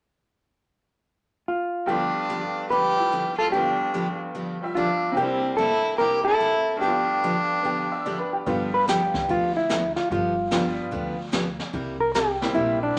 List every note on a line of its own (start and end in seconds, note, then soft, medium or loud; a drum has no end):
1.48 1.90 F4 medium
1.86 3.45 G2 medium
1.86 2.10 G2 soft
1.86 2.10 D3 medium
1.86 2.11 F3 medium
1.86 2.95 G3 soft
1.86 3.51 A3 medium
1.86 2.11 B3 medium
1.86 3.54 B3 medium
1.86 2.67 D4 medium
1.86 2.10 D4 medium
1.86 2.66 G4 medium
1.86 2.11 G4 medium
1.91 3.54 F4 medium
2.29 2.41 G2 medium
2.29 2.41 D3 medium
2.29 2.41 F3 medium
2.29 2.41 B3 medium
2.29 2.41 D4 medium
2.29 2.41 G4 medium
2.70 2.93 G2 soft
2.70 2.93 D3 soft
2.70 2.93 F3 medium
2.70 2.93 B3 soft
2.70 2.93 D4 medium
2.70 3.35 G4 medium
2.70 2.94 G4 medium
2.70 3.38 B4 loud
2.95 3.52 F3 soft
2.95 3.48 G3 soft
2.95 3.53 E4 soft
3.12 3.24 G2 medium
3.12 3.24 D3 medium
3.12 3.24 F3 medium
3.12 3.24 B3 medium
3.12 3.24 D4 medium
3.12 3.24 G4 medium
3.38 3.52 F4 medium
3.38 3.52 A4 medium
3.47 5.15 G2 medium
3.47 4.61 G3 soft
3.52 3.75 G2 medium
3.52 3.75 D3 soft
3.52 3.75 F3 medium
3.52 5.17 A3 soft
3.52 3.75 B3 medium
3.52 5.19 B3 soft
3.52 4.17 D4 medium
3.52 3.75 D4 medium
3.52 4.16 G4 medium
3.52 3.75 G4 medium
3.58 5.20 F4 medium
3.94 4.06 G2 medium
3.94 4.06 D3 medium
3.94 4.06 F3 medium
3.94 4.06 B3 medium
3.94 4.06 D4 medium
3.94 4.06 G4 medium
4.35 4.57 G2 soft
4.35 4.57 D3 medium
4.35 4.57 F3 medium
4.35 4.57 B3 medium
4.35 4.57 D4 medium
4.35 4.57 G4 medium
4.61 5.17 F3 soft
4.61 5.13 G3 soft
4.61 5.19 E5 soft
4.75 4.88 G2 medium
4.75 4.88 D3 medium
4.75 4.88 F3 medium
4.75 4.88 B3 medium
4.75 5.14 D4 medium
4.75 4.88 D4 medium
4.75 5.18 F4 medium
4.75 4.88 G4 medium
5.12 6.79 C3 medium
5.12 6.77 G3 medium
5.17 5.39 C3 soft
5.17 5.39 G3 medium
5.17 5.96 A#3 medium
5.17 5.39 A#3 medium
5.17 5.55 C4 medium
5.17 6.83 D4 medium
5.17 5.40 E4 medium
5.17 5.56 G4 medium
5.17 5.40 G4 medium
5.23 5.99 E4 medium
5.57 5.70 C3 medium
5.57 5.70 G3 medium
5.57 5.70 A#3 medium
5.57 5.97 E4 medium
5.57 5.70 E4 medium
5.57 5.70 G4 medium
5.57 5.98 A4 medium
5.98 6.21 C3 medium
5.98 6.21 G3 medium
5.98 6.81 A#3 soft
5.98 6.22 A#3 soft
5.98 6.82 C4 soft
5.98 6.22 E4 medium
5.98 6.83 E4 soft
5.98 6.24 G4 medium
5.98 6.22 G4 medium
5.98 6.24 A#4 loud
6.25 6.78 E4 medium
6.25 6.81 A4 loud
6.40 6.52 C3 medium
6.40 6.52 G3 medium
6.40 6.53 A#3 medium
6.40 6.53 E4 medium
6.40 6.53 G4 medium
6.76 8.43 G2 medium
6.76 8.45 G3 medium
6.81 7.04 G2 soft
6.81 7.04 D3 soft
6.81 7.04 F3 soft
6.81 8.46 A3 medium
6.81 7.04 B3 medium
6.81 7.61 B3 medium
6.81 8.27 D4 medium
6.81 7.04 D4 medium
6.81 8.27 G4 medium
6.81 7.05 G4 medium
6.87 8.46 F4 medium
7.24 7.35 G2 medium
7.24 7.35 D3 medium
7.24 7.35 F3 medium
7.24 7.35 B3 medium
7.24 7.36 D4 medium
7.24 7.35 G4 medium
7.62 7.86 G2 soft
7.62 7.86 D3 medium
7.62 7.86 F3 medium
7.62 8.45 B3 soft
7.62 7.87 B3 medium
7.62 8.45 D4 soft
7.62 7.87 D4 medium
7.62 7.87 G4 medium
7.62 8.31 G4 soft
7.92 8.13 E5 soft
8.06 8.17 G2 medium
8.06 8.17 D3 medium
8.06 8.17 F3 medium
8.06 8.18 B3 medium
8.06 8.18 D4 medium
8.06 8.18 G4 medium
8.06 8.30 D5 soft
8.19 8.40 B4 soft
8.33 8.54 G4 soft
8.46 9.12 G1 medium
8.46 8.68 D3 medium
8.46 8.68 F3 medium
8.46 9.61 G3 medium
8.46 9.61 B3 medium
8.46 8.69 B3 medium
8.46 9.61 D4 medium
8.46 8.69 D4 medium
8.46 9.61 F4 medium
8.46 8.69 G4 medium
8.46 brush sweep soft
8.46 kick soft
8.74 8.88 B4 medium
8.88 8.99 D3 medium
8.88 8.99 F3 medium
8.88 8.99 B3 medium
8.88 8.99 D4 medium
8.88 9.00 G4 medium
8.88 9.31 G4 medium
8.88 snare medium
8.88 hi-hat pedal medium
9.14 kick medium
9.14 snare soft
9.29 9.94 D2 medium
9.29 9.51 D3 medium
9.29 9.51 F3 medium
9.29 9.51 B3 medium
9.29 9.51 D4 medium
9.29 9.56 F4 medium
9.29 9.51 G4 medium
9.29 brush sweep soft
9.29 kick soft
9.57 9.96 E4 medium
9.69 9.81 D3 medium
9.69 9.81 F3 medium
9.69 9.81 B3 medium
9.69 9.81 D4 medium
9.69 9.81 G4 medium
9.69 snare medium
9.69 hi-hat pedal medium
9.96 10.10 F4 medium
9.96 snare soft
10.10 10.76 G1 medium
10.10 10.33 D3 medium
10.10 10.33 F3 medium
10.10 10.33 B3 medium
10.10 10.33 D4 medium
10.10 11.57 F4 medium
10.10 10.33 G4 medium
10.10 brush sweep soft
10.10 kick soft
10.51 10.63 D3 medium
10.51 10.63 F3 medium
10.51 11.13 G3 medium
10.51 11.14 B3 medium
10.51 10.63 B3 medium
10.51 10.63 D4 medium
10.51 11.14 D4 medium
10.51 11.14 F4 medium
10.51 10.63 G4 medium
10.51 snare medium
10.51 hi-hat pedal soft
10.91 11.58 D2 medium
10.91 11.14 D3 medium
10.91 11.14 F3 medium
10.91 11.14 B3 medium
10.91 11.14 D4 medium
10.91 11.14 G4 medium
10.91 brush sweep soft
10.91 kick soft
11.32 11.44 D3 medium
11.32 11.44 F3 medium
11.32 11.45 B3 medium
11.32 11.45 D4 medium
11.32 11.45 G4 medium
11.32 snare medium
11.32 hi-hat pedal soft
11.59 snare soft
11.73 12.39 C2 medium
11.73 11.96 C3 medium
11.73 11.96 G3 medium
11.73 11.96 A#3 medium
11.73 11.96 E4 medium
11.73 11.96 G4 medium
11.73 brush sweep soft
11.73 kick soft
12.00 12.14 A#4 medium
12.14 12.26 C3 medium
12.14 12.27 G3 medium
12.14 12.27 A#3 medium
12.14 12.27 E4 medium
12.14 12.27 G4 medium
12.14 12.58 G4 loud
12.14 snare medium
12.14 hi-hat pedal medium
12.41 12.94 G3 medium
12.41 12.94 A#3 medium
12.41 12.95 C4 medium
12.41 12.95 E4 medium
12.41 snare soft
12.54 12.91 A#1 medium
12.54 12.77 C3 medium
12.54 12.77 G3 medium
12.54 12.77 A#3 medium
12.54 12.83 E4 medium
12.54 12.78 E4 medium
12.54 12.78 G4 medium
12.54 brush sweep soft
12.54 kick soft
12.83 12.99 D4 medium